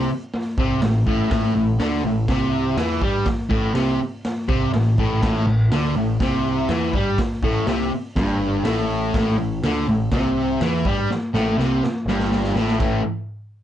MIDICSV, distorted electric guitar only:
0, 0, Header, 1, 3, 480
1, 0, Start_track
1, 0, Tempo, 488998
1, 1292, Time_signature, 4, 2, 24, 8
1, 13383, End_track
2, 0, Start_track
2, 0, Title_t, "Distorted electric guitar"
2, 0, Program_c, 0, 30
2, 575, Note_on_c, 0, 48, 95
2, 803, Note_off_c, 0, 48, 0
2, 807, Note_on_c, 0, 45, 75
2, 1002, Note_off_c, 0, 45, 0
2, 1049, Note_on_c, 0, 45, 101
2, 1273, Note_off_c, 0, 45, 0
2, 1285, Note_on_c, 0, 45, 100
2, 1510, Note_off_c, 0, 45, 0
2, 1521, Note_on_c, 0, 45, 67
2, 1719, Note_off_c, 0, 45, 0
2, 1761, Note_on_c, 0, 50, 108
2, 1999, Note_off_c, 0, 50, 0
2, 2013, Note_on_c, 0, 45, 76
2, 2204, Note_off_c, 0, 45, 0
2, 2253, Note_on_c, 0, 48, 84
2, 2725, Note_off_c, 0, 48, 0
2, 2729, Note_on_c, 0, 52, 103
2, 2963, Note_off_c, 0, 52, 0
2, 2963, Note_on_c, 0, 55, 99
2, 3200, Note_off_c, 0, 55, 0
2, 3429, Note_on_c, 0, 45, 103
2, 3666, Note_off_c, 0, 45, 0
2, 3670, Note_on_c, 0, 48, 102
2, 3914, Note_off_c, 0, 48, 0
2, 4398, Note_on_c, 0, 48, 102
2, 4638, Note_off_c, 0, 48, 0
2, 4646, Note_on_c, 0, 45, 75
2, 4841, Note_off_c, 0, 45, 0
2, 4895, Note_on_c, 0, 45, 109
2, 5116, Note_off_c, 0, 45, 0
2, 5128, Note_on_c, 0, 45, 105
2, 5358, Note_off_c, 0, 45, 0
2, 5370, Note_on_c, 0, 45, 71
2, 5563, Note_off_c, 0, 45, 0
2, 5615, Note_on_c, 0, 50, 100
2, 5847, Note_off_c, 0, 50, 0
2, 5852, Note_on_c, 0, 45, 77
2, 6044, Note_off_c, 0, 45, 0
2, 6104, Note_on_c, 0, 48, 89
2, 6570, Note_off_c, 0, 48, 0
2, 6574, Note_on_c, 0, 52, 110
2, 6806, Note_off_c, 0, 52, 0
2, 6820, Note_on_c, 0, 55, 93
2, 7050, Note_off_c, 0, 55, 0
2, 7298, Note_on_c, 0, 45, 99
2, 7528, Note_off_c, 0, 45, 0
2, 7536, Note_on_c, 0, 48, 105
2, 7767, Note_off_c, 0, 48, 0
2, 8011, Note_on_c, 0, 43, 87
2, 8479, Note_on_c, 0, 45, 112
2, 8485, Note_off_c, 0, 43, 0
2, 8959, Note_off_c, 0, 45, 0
2, 8980, Note_on_c, 0, 45, 105
2, 9198, Note_off_c, 0, 45, 0
2, 9210, Note_on_c, 0, 45, 68
2, 9404, Note_off_c, 0, 45, 0
2, 9468, Note_on_c, 0, 50, 108
2, 9694, Note_off_c, 0, 50, 0
2, 9701, Note_on_c, 0, 45, 79
2, 9889, Note_off_c, 0, 45, 0
2, 9937, Note_on_c, 0, 48, 97
2, 10408, Note_off_c, 0, 48, 0
2, 10420, Note_on_c, 0, 52, 107
2, 10649, Note_off_c, 0, 52, 0
2, 10660, Note_on_c, 0, 55, 104
2, 10889, Note_off_c, 0, 55, 0
2, 11131, Note_on_c, 0, 45, 89
2, 11362, Note_off_c, 0, 45, 0
2, 11366, Note_on_c, 0, 48, 104
2, 11602, Note_off_c, 0, 48, 0
2, 11861, Note_on_c, 0, 43, 88
2, 12322, Note_on_c, 0, 45, 106
2, 12328, Note_off_c, 0, 43, 0
2, 12545, Note_off_c, 0, 45, 0
2, 12557, Note_on_c, 0, 45, 106
2, 12566, Note_on_c, 0, 52, 98
2, 12571, Note_on_c, 0, 57, 93
2, 12755, Note_off_c, 0, 45, 0
2, 12760, Note_off_c, 0, 52, 0
2, 12762, Note_off_c, 0, 57, 0
2, 13383, End_track
3, 0, Start_track
3, 0, Title_t, "Muted distorted electric guitar strokes"
3, 3209, Note_on_c, 9, 29, 62
3, 3307, Note_off_c, 9, 29, 0
3, 7065, Note_on_c, 9, 29, 59
3, 7163, Note_off_c, 9, 29, 0
3, 10905, Note_on_c, 9, 29, 61
3, 11003, Note_off_c, 9, 29, 0
3, 13383, End_track
0, 0, End_of_file